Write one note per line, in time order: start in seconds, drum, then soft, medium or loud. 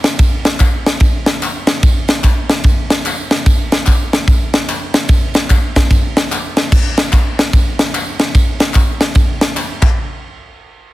0.04 snare loud
0.04 ride medium
0.04 tambourine medium
0.19 kick loud
0.19 ride medium
0.19 tambourine medium
0.45 snare loud
0.45 ride medium
0.45 tambourine medium
0.60 kick medium
0.60 clap loud
0.60 ride medium
0.60 tambourine medium
0.86 snare loud
0.86 ride medium
0.86 tambourine medium
1.00 kick loud
1.00 ride medium
1.00 tambourine medium
1.26 snare loud
1.26 ride medium
1.26 tambourine medium
1.42 clap loud
1.42 ride medium
1.42 tambourine loud
1.67 snare loud
1.67 ride medium
1.67 tambourine medium
1.83 kick loud
1.83 ride medium
1.83 tambourine medium
2.08 snare loud
2.08 ride medium
2.08 tambourine medium
2.24 kick medium
2.24 clap medium
2.24 ride medium
2.24 tambourine medium
2.50 snare loud
2.50 ride medium
2.50 tambourine medium
2.64 kick loud
2.64 ride medium
2.64 tambourine medium
2.90 snare loud
2.90 ride medium
2.90 tambourine medium
3.05 clap loud
3.05 ride medium
3.05 tambourine loud
3.31 snare loud
3.31 ride medium
3.46 kick loud
3.46 ride medium
3.46 tambourine medium
3.72 snare loud
3.72 ride medium
3.72 tambourine medium
3.86 kick medium
3.86 clap medium
3.86 ride medium
3.86 tambourine medium
4.13 snare loud
4.13 ride medium
4.13 tambourine medium
4.28 kick loud
4.28 ride medium
4.28 tambourine medium
4.53 snare loud
4.53 ride medium
4.53 tambourine medium
4.69 clap loud
4.69 ride medium
4.69 tambourine loud
4.94 snare loud
4.94 ride medium
4.94 tambourine medium
5.09 kick loud
5.09 ride medium
5.09 tambourine medium
5.34 snare loud
5.34 ride medium
5.34 tambourine medium
5.50 kick medium
5.50 clap medium
5.50 ride medium
5.50 tambourine loud
5.75 kick medium
5.75 snare loud
5.75 ride medium
5.75 tambourine soft
5.91 kick loud
5.91 ride medium
5.91 tambourine medium
6.17 snare loud
6.17 ride medium
6.17 tambourine medium
6.32 clap loud
6.32 ride medium
6.32 tambourine loud
6.57 snare loud
6.57 ride medium
6.57 tambourine medium
6.72 kick loud
6.72 crash loud
6.72 tambourine medium
6.97 snare loud
6.97 ride medium
6.97 tambourine medium
7.12 kick medium
7.12 clap medium
7.12 ride medium
7.12 tambourine medium
7.39 snare loud
7.39 ride medium
7.39 tambourine medium
7.53 kick loud
7.53 ride medium
7.53 tambourine medium
7.79 snare loud
7.79 ride medium
7.79 tambourine medium
7.94 clap loud
7.94 ride medium
7.94 tambourine loud
8.19 snare loud
8.19 ride medium
8.19 tambourine medium
8.35 kick loud
8.35 ride medium
8.35 tambourine medium
8.60 snare loud
8.60 ride medium
8.60 tambourine medium
8.74 kick medium
8.74 clap medium
8.74 ride medium
8.74 tambourine medium
9.01 snare loud
9.01 ride medium
9.01 tambourine medium
9.15 kick loud
9.15 ride medium
9.15 tambourine medium
9.41 snare loud
9.41 ride medium
9.41 tambourine medium
9.57 clap loud
9.57 ride medium
9.57 tambourine loud
9.82 kick loud
9.82 clap medium
9.82 crash medium